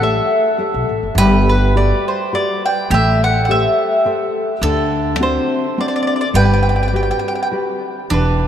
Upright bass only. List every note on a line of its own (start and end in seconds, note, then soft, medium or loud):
0.00 0.18 A1 loud
0.74 0.88 B1 medium
0.89 1.02 A1 medium
1.03 1.14 G1 medium
1.15 1.91 G1 loud
2.90 3.65 A1 loud
4.62 5.36 D2 loud
6.34 7.10 G1 loud
8.11 8.48 E1 medium